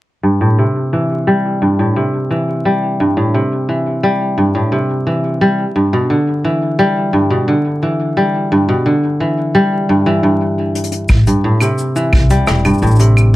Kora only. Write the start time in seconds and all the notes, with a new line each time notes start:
0.23 G2
0.41 A2
0.59 C3
0.93 E3
1.27 G3
1.62 G2
1.79 A2
1.96 C3
2.31 E3
2.65 G3
3.00 G2
3.17 A2
3.34 C3
3.69 E3
4.03 G3
4.38 G2
4.55 A2
4.72 C3
5.07 E3
5.41 G3
5.76 G2
5.93 B2
6.10 D3
6.44 E3
6.79 G3
7.13 G2
7.30 B2
7.48 D3
7.83 E3
8.17 G3
8.52 G2
8.69 B2
8.86 D3
9.20 E3
9.55 G3
9.89 G2
10.06 E3
10.23 G2
11.27 G2
11.44 A2
11.61 C3
11.96 E3
12.30 G3
12.65 G2
12.82 A2
13.00 C3